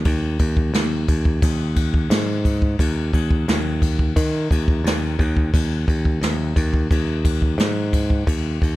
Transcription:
0.05 D#2, kick, crash
0.39 D#2, kick, crash
0.57 kick
0.74 D#2, snare, crash
1.08 D#2, kick, crash
1.25 kick
1.42 D#2, kick, crash
1.76 kick, crash
1.94 kick
2.10 G#2, snare, crash
2.45 kick, crash
2.62 kick
2.79 D#2, kick, crash
3.13 D#2, kick, crash
3.31 kick
3.48 D#2, snare, crash
3.82 kick, crash
3.99 kick
4.16 D#3, kick, crash
4.51 D#2, kick, crash
4.68 kick
4.84 D#2, snare, crash
5.19 D#2, kick, crash
5.37 kick
5.54 D#2, kick, crash
5.88 D#2, kick, crash
6.05 kick
6.21 D#2, snare, crash
6.56 D#2, kick, crash
6.74 kick
6.91 D#2, kick, crash
7.25 kick, crash
7.42 kick
7.58 G#2, snare, crash
7.93 kick, crash
8.10 kick
8.27 D#2, kick, crash
8.62 D#2, kick, crash

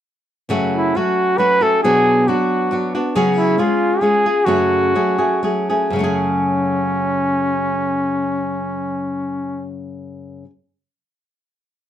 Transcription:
0.49 F#2 C#3 F#3 A3 C#4 F#4
0.76 E4
0.95 F#3 A3 C#4 F#4
1.38 F#3 A3 C#4 F#4 B4
1.61 F#3 A3 C#4 F#4 A4
1.83 B2 F#3 B3 D4 F#4 G#4
2.28 F#3 B3 D4 F#4
2.71 F#3 B3 D4 F#4
2.95 B3 D4 F#4
3.15 C#3 F#3 C#4 F#4 G#4
3.38 E4
3.58 G#3 C#4 F4 G#4
4.01 G#3 C#4 F4 G#4
4.26 C#4 F4 G#4
4.45 F#2 C#3 F#3 A3 C#4 F#4 G#4
4.95 F#3 A3 C#4 G#4
5.18 F#3 A3 C#4 G#4
5.43 F#3 A3 C#4 G#4
5.69 F#3 A3 C#4 G#4
5.90 F#2 C#3 C#4
5.96 F#3 A3
6.00 C#4 G#4

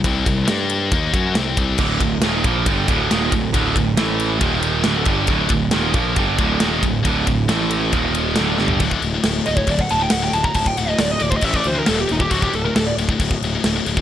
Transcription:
0.04 C2 C3 G3 C4, kick, ride
0.26 C2 C3 G3, kick, ride
0.48 G2 G3 D4 G4, snare, ride
0.70 ride
0.92 D#2 D#3 A#3 D#4, kick, ride
1.14 F#2 F#3 C#4 F#4, kick, ride
1.35 C2 C3 G3 C4, snare, ride
1.57 C2 C3 G3 C4, kick, ride
1.78 D1 D2 A2 D3, kick, crash
2.00 D1 D2 A2, kick, ride
2.22 D#1 D#2 A#2 D#3, snare, ride
2.44 A#1 A#2 F3 A#3, kick, ride
2.66 G1 G2 D3 G3, kick, ride
2.88 D1 D2 A2 D3, kick, ride
3.10 D#1 D#2 A#2 D#3, snare, ride
3.32 D1 D2 A2, kick, ride
3.54 D1 D2 A2 D3, kick, ride
3.75 D1 D2 A2, kick, ride
3.97 A1 A2 E3 A3, snare, ride
4.20 ride
4.41 D#1 D#2 A#2 D#3, kick, ride
4.63 ride
4.84 D1 D2 A2 D3, snare, ride
5.05 G1 G2 D3 G3, kick, ride
5.27 D1 D2 A2 D3, kick, ride
5.49 D1 D2 A2, kick, ride
5.71 D#1 D#2 A#2 D#3, snare, ride
5.94 A#1 A#2 F3 A#3, kick, ride
6.16 G1 G2 D3 G3, kick, ride
6.38 D1 D2 A2 D3, kick, ride
6.60 D#1 D#2 A#2 D#3, snare, ride
6.82 D1 D2 A2, kick, ride
7.03 D1 D2 A2 D3, kick, ride
7.25 D1 D2 A2, kick, ride
7.48 A1 A2 E3 A3, snare, ride
7.71 ride
7.92 D#1 D#2 A#2 D#3, kick, ride
8.15 ride
8.36 D1 D2 A2 D3, snare, ride
8.58 G1 G2 D3 G3, snare
8.68 floor tom
8.80 D1 D2 A2 D3, kick, crash
8.91 kick
9.02 D1 D2 A2, crash
9.14 D2 A2
9.24 D1 D2 A2, snare, crash
9.46 D1 D2 A2 D#5, crash
9.57 D2 A2 C#5, kick
9.67 D1 D2 A2 D5, kick, crash
9.79 F#5, kick
9.89 D1 D2 A2 A5, crash
10.00 D2 A2 G5
10.10 D1 D2 A2 F#5, snare, crash
10.22 D2 A2 G5
10.33 D1 D2 A2 A5, crash
10.44 D2 A2 A#5, kick
10.54 D1 D2 A2 A5, kick, crash
10.66 G5, kick
10.77 D1 D2 A2 F#5, crash
10.88 D2 A2 D#5
10.99 D1 D2 A2 D5, snare, crash
11.11 D#5
11.19 D1 D2 A2 D5, crash
11.30 D2 A2 C5, kick
11.37 D#5
11.41 A1 A2 E3 A3 E5, kick, crash
11.54 D5, kick
11.64 D2 A2 E3 C5, crash
11.75 A2 E3 A#4
11.86 D#1 D#2 A#2 D#3 A4, snare, crash
11.98 D#2 A#2 G4
12.08 D#1 D#2 A#2, crash
12.12 D#4
12.20 D#2 A#2 G4, kick
12.30 D1 D2 A2 D3 F#4, kick, crash
12.42 G4, kick
12.53 D1 D2 A2 A4, crash
12.65 D2 A2 A#4
12.75 D1 D2 A2 A4, snare, crash
12.87 D5
12.98 D1 D2 A2, crash
13.09 D2 A2, kick
13.20 D1 D2 A2, kick, crash
13.31 kick
13.42 D1 D2 A2, crash
13.55 D2 A2
13.64 D1 D2 A2, snare, crash
13.76 D2 A2
13.86 D1 D2 A2, crash
13.97 A2, kick

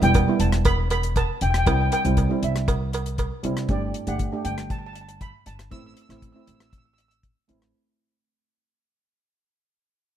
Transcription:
0.02 E1 G3 B3 E4 G5, closed hi-hat
0.14 kick, closed hi-hat, cowbell
0.28 G3 B3 E4
0.39 E1 A5, closed hi-hat
0.52 cross-stick, closed hi-hat
0.65 B5, kick, closed hi-hat, cowbell
0.90 B5, closed hi-hat, cowbell
1.03 closed hi-hat
1.16 A5, kick, closed hi-hat, cowbell
1.41 E1 G5, closed hi-hat
1.50 G5
1.54 G5, cross-stick, closed hi-hat
1.66 C2 G3 C4 E4 G5, kick, closed hi-hat, cowbell
1.73 G5
1.81 G5
1.92 G5, closed hi-hat, cowbell
2.05 C2 G3 C4 E4, closed hi-hat
2.17 kick, closed hi-hat, cowbell
2.29 G3 C4 E4
2.42 C2 E5, closed hi-hat
2.56 cross-stick, closed hi-hat
2.68 kick, closed hi-hat, cowbell
2.93 closed hi-hat, cowbell
3.06 closed hi-hat
3.18 kick, closed hi-hat, cowbell
3.43 C2 G3 C4 E4, closed hi-hat
3.57 cross-stick, closed hi-hat
3.68 G1 A3 D4 G4 D5, kick, closed hi-hat
3.94 closed hi-hat
4.07 G1 A3 D4 G4 F#5, closed hi-hat
4.19 kick, closed hi-hat
4.32 A3 D4 G4
4.45 G1 G5, closed hi-hat
4.58 cross-stick, closed hi-hat
4.70 A5, kick, closed hi-hat
4.79 A5
4.86 A5
4.93 A5, closed hi-hat
5.01 A5
5.09 A5, closed hi-hat
5.21 B5, kick, closed hi-hat
5.46 G1 A5, closed hi-hat
5.59 cross-stick, closed hi-hat
5.71 A1 A3 C4 E4 E6, kick, closed hi-hat
5.79 E6
5.86 E6
5.94 E6, closed hi-hat
6.02 E6
6.09 A1 A3 C4 E4 E6, cross-stick, closed hi-hat
6.17 E6
6.22 E6, kick, closed hi-hat
6.32 A3 C4 E4 E6
6.40 E6
6.47 A1 E6, closed hi-hat
6.55 E6
6.60 E6, cross-stick, closed hi-hat
6.70 E6, kick, closed hi-hat
6.78 E6
6.85 E6
6.93 E6
6.98 E6, closed hi-hat
7.08 E6, closed hi-hat
7.23 kick, closed hi-hat
7.48 A1 A3 C4 E4, closed hi-hat
7.62 cross-stick, closed hi-hat

